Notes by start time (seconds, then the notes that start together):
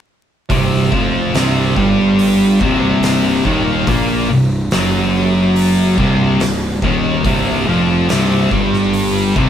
0.50 C1 C2 C3, kick, open hi-hat
0.92 F1 F2 F3, kick
1.34 C1 C2 C3, snare, open hi-hat
1.76 G1 G2 G3, kick
2.19 open hi-hat
2.61 C1 C2 C3, kick
3.03 snare, open hi-hat
3.45 D#1 D#2 D#3, kick
3.87 A#1 A#2 A#3, kick, open hi-hat
4.30 C1 C2
4.71 F#1 F#2 F#3, snare, open hi-hat
5.56 open hi-hat
5.97 C1 C2 C3, kick
6.40 C1 C2, snare, open hi-hat
6.82 D#1 D#2 D#3, kick
7.24 C1 C2 C3, kick, open hi-hat
7.66 F1 F2 F3
8.09 C1 C2 C3, snare, open hi-hat
8.51 G1 G2 G3, kick
8.74 snare
8.93 open hi-hat
9.36 C1 C2 C3, kick